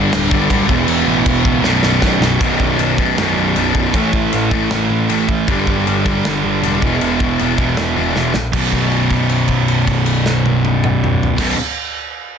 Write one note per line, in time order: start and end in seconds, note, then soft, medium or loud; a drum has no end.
0.00 0.30 G2 medium
0.00 0.31 D3 medium
0.00 0.29 G3 loud
0.13 0.28 D1 medium
0.13 snare loud
0.13 crash medium
0.30 0.46 G1 medium
0.30 0.48 G2 medium
0.30 0.50 D3 medium
0.30 0.49 G3 medium
0.30 kick medium
0.49 0.69 D1 medium
0.49 0.67 G2 medium
0.49 0.69 D3 medium
0.49 0.70 G3 medium
0.49 kick medium
0.49 crash medium
0.68 0.84 E1 medium
0.68 1.62 E2 medium
0.68 1.64 B2 loud
0.68 1.65 E3 loud
0.68 kick loud
0.88 1.03 E1 loud
0.88 crash medium
1.08 1.22 A1 medium
1.26 1.41 E1 loud
1.26 kick medium
1.26 crash medium
1.45 1.60 C#1 loud
1.45 kick loud
1.63 1.79 B0 medium
1.63 2.39 B1 medium
1.63 2.40 F#2 loud
1.63 2.41 B2 loud
1.63 snare medium
1.83 1.98 B0 medium
1.83 snare medium
2.02 2.17 B0 medium
2.02 kick medium
2.02 snare medium
2.21 2.36 B0 medium
2.21 snare medium
2.40 2.58 B0 medium
2.40 2.97 B1 medium
2.40 2.98 F#2 medium
2.40 2.97 B2 loud
2.40 kick loud
2.40 china medium
2.60 2.77 B0 medium
2.60 kick medium
2.78 3.13 B0 loud
2.78 china medium
2.98 3.55 F#2 medium
2.98 3.54 B2 medium
2.98 kick medium
3.02 3.54 B1 medium
3.16 3.35 B0 loud
3.16 3.92 B1 medium
3.16 3.93 F#2 medium
3.16 3.94 B2 medium
3.16 snare loud
3.16 china medium
3.36 3.53 B0 medium
3.55 3.90 B0 medium
3.55 3.92 B1 medium
3.55 3.94 F#2 medium
3.55 3.94 B2 medium
3.55 china medium
3.75 kick medium
3.93 4.28 A1 medium
3.93 4.50 A2 medium
3.93 4.51 E3 medium
3.93 4.50 A3 medium
3.93 kick loud
3.93 china medium
4.13 kick loud
4.33 4.50 A1 medium
4.33 china medium
4.51 4.69 A1 medium
4.51 5.07 A2 medium
4.51 5.08 E3 medium
4.51 5.08 A3 medium
4.51 kick medium
4.70 4.88 A1 medium
4.70 5.46 A2 medium
4.70 5.47 E3 medium
4.70 snare loud
4.70 china soft
4.74 5.48 A3 medium
4.90 5.07 A1 medium
5.08 5.26 A1 medium
5.08 5.46 A2 medium
5.08 5.47 E3 medium
5.08 5.47 A3 medium
5.08 china medium
5.29 5.46 A1 medium
5.29 kick medium
5.48 5.65 G1 medium
5.48 6.04 G2 medium
5.48 6.05 D3 medium
5.48 6.05 G3 loud
5.48 kick loud
5.48 china medium
5.67 5.84 G1 medium
5.67 kick medium
5.87 6.21 G1 loud
5.87 china medium
6.05 6.61 G2 medium
6.05 6.62 D3 medium
6.05 6.61 G3 medium
6.05 kick medium
6.25 6.42 G1 medium
6.25 6.81 G2 medium
6.25 6.82 D3 medium
6.25 6.83 G3 medium
6.25 snare loud
6.25 china medium
6.44 6.61 G1 medium
6.62 6.80 E1 medium
6.62 6.80 G2 medium
6.62 6.81 D3 medium
6.62 6.82 G3 medium
6.62 china medium
6.82 6.99 E1 medium
6.82 7.38 E2 medium
6.82 7.39 B2 loud
6.82 7.40 E3 loud
6.82 kick loud
7.01 7.35 E1 medium
7.01 china medium
7.20 kick medium
7.39 7.57 E1 medium
7.39 7.96 E2 medium
7.39 7.97 B2 medium
7.39 china soft
7.44 7.95 E3 medium
7.57 7.75 E1 medium
7.57 8.35 E2 medium
7.57 8.34 B2 medium
7.57 8.33 E3 medium
7.57 kick medium
7.77 7.95 E1 medium
7.77 snare loud
7.77 china soft
7.96 8.14 E1 medium
7.96 8.36 E2 medium
7.96 8.35 B2 medium
7.96 8.34 E3 medium
8.16 8.33 E1 medium
8.16 snare medium
8.34 8.52 A#1 medium
8.34 snare medium
8.53 11.29 B0 medium
8.53 11.36 B1 medium
8.53 11.38 F#2 medium
8.53 kick loud
8.53 crash medium
8.57 11.40 B2 medium
8.72 kick medium
8.72 crash soft
8.92 crash soft
9.10 kick medium
9.10 crash soft
9.29 crash soft
9.48 kick medium
9.48 crash soft
9.68 crash soft
9.87 kick medium
9.87 crash soft
10.06 crash medium
10.26 snare loud
10.46 high tom medium
10.65 high tom medium
10.84 mid tom medium
11.04 mid tom medium
11.23 floor tom medium
11.37 11.54 B0 medium
11.37 11.54 B1 medium
11.37 11.55 F#2 medium
11.37 11.56 B2 medium
11.37 kick loud
11.37 snare loud
11.37 crash loud